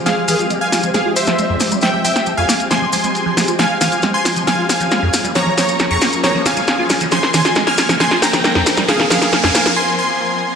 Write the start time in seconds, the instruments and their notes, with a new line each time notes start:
0.06 acid bass F3, supersaw synth G#4 F5, snare, closed hi-hat, maracas
0.28 acid bass E3, supersaw synth G#4 F5, open hi-hat, maracas
0.39 acid bass F4, closed hi-hat, maracas
0.50 acid bass G#3, closed hi-hat, maracas
0.61 supersaw synth F5 G#5
0.72 acid bass F4, snare, open hi-hat, maracas
0.83 acid bass F3, closed hi-hat, maracas
0.94 acid bass F3, supersaw synth G#4 F5, snare, closed hi-hat, maracas
1.05 acid bass F4
1.16 supersaw synth C5 E5, open hi-hat, maracas
1.26 acid bass F3, snare, closed hi-hat, maracas
1.39 acid bass G#3, closed hi-hat, maracas
1.50 acid bass F2
1.60 snare, open hi-hat, maracas
1.71 acid bass G3, closed hi-hat, maracas
1.81 acid bass F3, supersaw synth E5 G5, snare, closed hi-hat, maracas
1.94 acid bass F3
2.04 acid bass F3, supersaw synth E5 G5, open hi-hat, maracas
2.16 snare, closed hi-hat, maracas
2.26 acid bass F3, closed hi-hat, maracas
2.37 acid bass F2, supersaw synth F5 G#5
2.49 acid bass A#3, snare, open hi-hat, maracas
2.60 closed hi-hat, maracas
2.71 acid bass F3, supersaw synth G#5 C6, snare, closed hi-hat, maracas
2.82 acid bass F3
2.93 acid bass F3, supersaw synth G#5 C6, open hi-hat, maracas
3.04 acid bass G#3, closed hi-hat, maracas
3.15 closed hi-hat, maracas
3.26 acid bass F3
3.37 acid bass F3, snare, open hi-hat, maracas
3.48 acid bass F4, closed hi-hat, maracas
3.59 acid bass F3, supersaw synth F5 G#5, snare, closed hi-hat, riser, maracas
3.81 acid bass E3, supersaw synth F5 G#5, snare, open hi-hat, maracas
3.92 acid bass F4, closed hi-hat, maracas
4.02 acid bass G#3, snare, closed hi-hat, maracas
4.14 supersaw synth G#5 C6
4.25 acid bass F4, snare, open hi-hat, maracas
4.36 acid bass F3, closed hi-hat, maracas
4.47 acid bass F3, supersaw synth F5 G#5, snare, closed hi-hat, maracas
4.58 acid bass F4
4.69 supersaw synth F5 G#5, snare, open hi-hat, maracas
4.80 acid bass F3, closed hi-hat, maracas
4.91 acid bass G#3, snare, closed hi-hat, maracas
5.02 acid bass F2
5.13 snare, open hi-hat, maracas
5.24 acid bass G3, closed hi-hat, maracas
5.35 acid bass F3, supersaw synth C#5 A#5, snare, closed hi-hat, maracas
5.47 acid bass F3
5.57 acid bass F3, supersaw synth C#5 A#5, snare, open hi-hat, maracas
5.69 closed hi-hat, maracas
5.79 acid bass F3, snare, closed hi-hat, maracas
5.91 acid bass F2, supersaw synth A#5 C#6
6.01 acid bass A#3, snare, open hi-hat, maracas
6.13 closed hi-hat, maracas
6.24 acid bass F3, supersaw synth C#5 A#5, snare, closed hi-hat, maracas
6.35 acid bass F3
6.46 supersaw synth F5 G#5, snare, open hi-hat, maracas
6.57 acid bass G3, closed hi-hat, maracas
6.68 snare, closed hi-hat, maracas
6.79 acid bass F4
6.90 acid bass G3, snare, open hi-hat, maracas
7.01 acid bass F3, closed hi-hat, maracas
7.11 acid bass F3, supersaw synth G#5 C6, snare, closed hi-hat, maracas
7.23 snare
7.34 acid bass E3, supersaw synth G#5 C6, snare, open hi-hat, maracas
7.45 acid bass F4, snare, closed hi-hat, maracas
7.56 acid bass G#3, snare, closed hi-hat, maracas
7.67 supersaw synth G#5 F6, snare
7.78 acid bass F4, snare, open hi-hat, maracas
7.89 acid bass F3, snare, closed hi-hat, maracas
8.00 acid bass F3, supersaw synth G#5 C6, snare, closed hi-hat, maracas
8.11 acid bass F4, snare
8.22 supersaw synth G5 A#5, snare, open hi-hat, maracas
8.33 acid bass F3, snare, closed hi-hat, maracas
8.44 acid bass G#3, snare, closed hi-hat, maracas
8.55 acid bass F2, snare
8.66 snare, open hi-hat, maracas
8.77 acid bass G3, snare, closed hi-hat, maracas
8.88 acid bass F3, supersaw synth G#4 F5, snare, closed hi-hat, noise sweep, maracas
9.00 acid bass F3, snare
9.10 acid bass F3, supersaw synth G#4 F5, snare, open hi-hat, maracas
9.22 snare, closed hi-hat, maracas
9.32 acid bass F3, snare, closed hi-hat, maracas
9.43 acid bass F2, supersaw synth F5 G#5, snare
9.55 acid bass A#3, snare, open hi-hat, maracas
9.66 snare, closed hi-hat, maracas
9.77 supersaw synth G#5 C6
9.99 supersaw synth G#5 C6